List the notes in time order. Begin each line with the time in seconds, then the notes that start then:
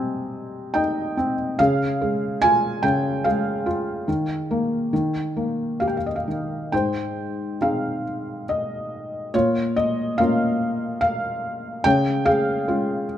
Already playing: C3 G3 C4 D#5 G#5
0.74 D#4 D#5 G5
1.17 C4
1.59 C#3 G#4 F5
2.01 G#3
2.42 F4 G#5
2.83 C#3 G5
3.24 G#3 G#4 F5
3.66 F4
4.08 D#3
4.51 A#3
4.93 D#3
5.36 A#3
5.80 G4 F5
5.88 G5
5.97 F5
6.06 D#5
6.16 F5
6.28 D#3
6.72 G#2 C5 G5
7.61 C4 D#4 G#4 F5
8.49 D#5
9.34 A#2 F4 C#5
9.76 D#5
10.18 A#3 C#4 F4 F5
11.01 F5
11.84 C#3 C#5 G5
12.25 G#4 F5
12.68 G#3 C#4 F4